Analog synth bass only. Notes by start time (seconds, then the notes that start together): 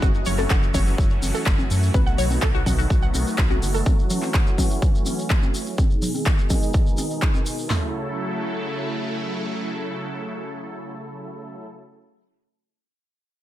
0.02 F#1
0.26 F#1
0.50 F#1
0.74 F#1
0.98 F#1
1.22 F#1
1.46 F#1
1.70 F#2
1.94 B1
2.18 B1
2.42 B1
2.66 B1
2.90 B1
3.14 B1
3.38 B1
3.62 F#1